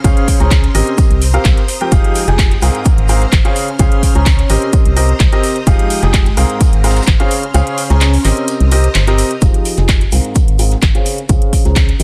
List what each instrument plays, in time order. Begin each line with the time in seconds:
Already playing: string machine C#4 C6 F6
0.04 fm bass C#2, upright piano C#3 C#4 G#4 C5 F5, kick, closed hi-hat, shaker
0.17 closed hi-hat
0.28 kick, open hi-hat, shaker
0.40 fm bass C#2, upright piano C#3 C#4 G#4 C5 A#5, snare, closed hi-hat
0.51 kick, snare, clap, closed hi-hat, shaker
0.64 closed hi-hat
0.75 fm bass G#1, upright piano C3 C4 G4 A#4 D#5, open hi-hat, shaker
0.87 closed hi-hat
0.98 string machine C5 A#5 D#6, kick, closed hi-hat, shaker
1.10 fm bass C2, closed hi-hat
1.22 open hi-hat, shaker
1.34 upright piano C3 C4 G4 A#4 F5, closed hi-hat
1.45 fm bass C2, kick, snare, clap, closed hi-hat, shaker
1.57 snare, closed hi-hat
1.68 snare, open hi-hat, shaker
1.81 upright piano F3 C4 G4 A#4 G5, closed hi-hat
1.92 fm bass F1, upright piano F3 D#4 G4 G#4 F5, string machine G#3 G5, kick, closed hi-hat, shaker
2.04 closed hi-hat
2.15 open hi-hat, shaker
2.28 fm bass F1, upright piano F3 D#4 G4 G#4 G#5, snare, closed hi-hat
2.39 kick, snare, clap, closed hi-hat, shaker
2.51 snare, closed hi-hat
2.61 fm bass C2, upright piano G#2 C4 G#4 A#4 F5, open hi-hat, shaker
2.74 closed hi-hat
2.85 string machine C5 A#5 F6, kick, closed hi-hat, shaker
2.98 fm bass G#1, closed hi-hat
3.08 upright piano G#2 C4 G#4 A#4 F5, open hi-hat, shaker
3.21 snare, closed hi-hat
3.32 fm bass G#1, kick, snare, clap, closed hi-hat, shaker
3.45 upright piano C#3 C#4 G#4 C5 F5, closed hi-hat
3.55 string machine C#4 C6, open hi-hat, shaker
3.68 closed hi-hat
3.79 fm bass C#2, upright piano C#3 C#4 G#4 C5 F5, kick, closed hi-hat, shaker
3.92 closed hi-hat
4.03 kick, open hi-hat, shaker
4.15 fm bass C#2, upright piano C#3 C#4 G#4 C5 A#5, snare, closed hi-hat
4.26 kick, snare, clap, closed hi-hat, shaker
4.39 closed hi-hat
4.50 fm bass G#1, upright piano C3 C4 G4 A#4 D#5, open hi-hat, shaker
4.62 closed hi-hat
4.73 string machine C5 A#5 D#6, kick, closed hi-hat, shaker
4.85 fm bass C2, closed hi-hat
4.96 upright piano C3 C4 G4 A#4 D#5, open hi-hat, shaker
5.09 closed hi-hat
5.20 fm bass C2, kick, snare, clap, closed hi-hat, shaker
5.32 upright piano C3 C4 G4 A#4 D#5, snare, closed hi-hat
5.43 snare, open hi-hat, shaker
5.56 closed hi-hat
5.67 fm bass F1, upright piano F3 D#4 G4 G#4 F5, string machine G#3 G5, kick, closed hi-hat, shaker
5.79 closed hi-hat
5.90 open hi-hat, shaker
6.03 fm bass F1, upright piano F3 D#4 G4 G#4 G#5, snare, closed hi-hat
6.14 kick, snare, clap, closed hi-hat, shaker
6.26 snare, closed hi-hat
6.37 fm bass C2, upright piano G#2 C4 G#4 A#4 F5, open hi-hat, shaker
6.49 closed hi-hat
6.61 string machine C5 A#5 F6, kick, closed hi-hat, shaker
6.73 fm bass G#1, closed hi-hat
6.84 upright piano G#2 C4 G#4 A#4 F5, snare, open hi-hat, shaker
6.90 snare, shaker
6.96 snare, closed hi-hat, shaker
7.02 snare, shaker
7.07 fm bass G#1, kick, snare, clap, closed hi-hat
7.20 upright piano C#3 C#4 G#4 C5 F5, closed hi-hat
7.31 string machine C#4 C6, open hi-hat, shaker
7.43 closed hi-hat
7.54 fm bass C#2, upright piano C#3 C#4 G#4 C5 F5, closed hi-hat, shaker
7.67 closed hi-hat
7.78 open hi-hat, shaker
7.90 fm bass C#2, upright piano C#3 C#4 G#4 C5 A#5, snare, closed hi-hat
8.01 snare, clap, closed hi-hat, shaker
8.13 open hi-hat
8.24 fm bass G#1, upright piano C3 C4 G4 A#4 D#5, clap, open hi-hat, shaker
8.37 closed hi-hat
8.48 string machine C5 A#5 D#6, closed hi-hat, shaker
8.60 fm bass C2, closed hi-hat
8.71 upright piano C3 C4 G4 A#4 D#5, open hi-hat
8.84 closed hi-hat
8.95 fm bass G1, snare, clap, closed hi-hat, shaker
9.07 upright piano C3 C4 G4 A#4 D#5, snare, closed hi-hat
9.18 open hi-hat, shaker
9.31 closed hi-hat
9.42 fm bass F1, upright piano F3 D#4 G4 G#4, ambient pad D#4, kick, closed hi-hat, shaker
9.54 closed hi-hat
9.65 open hi-hat, shaker
9.77 fm bass F1, upright piano F3 D#4 G4 G#4 G#5, snare, closed hi-hat
9.84 ambient pad G#4 G5
9.89 kick, snare, clap, closed hi-hat, shaker
10.01 snare, closed hi-hat
10.12 fm bass C2, upright piano G#2 C4 G#4 A#4 F5, open hi-hat, shaker
10.24 closed hi-hat
10.35 ambient pad C4, kick, closed hi-hat, shaker
10.48 fm bass G#1, closed hi-hat
10.53 ambient pad A#4
10.59 upright piano G#2 C4 G#4 A#4 F5, open hi-hat, shaker
10.68 ambient pad F5, closed hi-hat
10.72 snare
10.82 fm bass G#1, kick, snare, clap, closed hi-hat, shaker
10.95 upright piano C#3 C#4 G#4 C5 F5, closed hi-hat
11.06 ambient pad C#4, open hi-hat, shaker
11.18 closed hi-hat
11.29 fm bass C#2, upright piano C#3 C#4 G#4 C5 F5, kick, closed hi-hat, shaker
11.35 ambient pad C5
11.42 closed hi-hat
11.53 kick, open hi-hat, shaker
11.65 fm bass C#2, upright piano C#3 C#4 G#4 C5 A#5, snare, closed hi-hat
11.76 kick, snare, clap, closed hi-hat, shaker
11.89 closed hi-hat
12.00 fm bass G#1, upright piano C3 C4 G4 A#4 D#5, open hi-hat, shaker